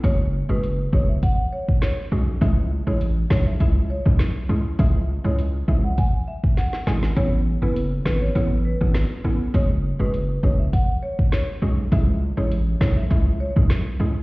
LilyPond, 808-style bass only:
\new Staff \with { instrumentName = "808-style bass" } { \clef bass \time 4/4 \key cis \phrygian \tempo 4 = 101 fis,,8. fis,,8. fis,,8 r4. b,,8 | cis,8. a,,8. b,,8 cis,8. b,,8 r16 cis,16 r16 | cis,8. cis,8. cis,8 r4. gis,,8 | a,,8. fis,,8. gis,,8 a,,8. gis,,8 r16 a,,16 r16 |
fis,,8. fis,,8. fis,,8 r4. b,,8 | cis,8. a,,8. b,,8 cis,8. b,,8 r16 cis,16 r16 | }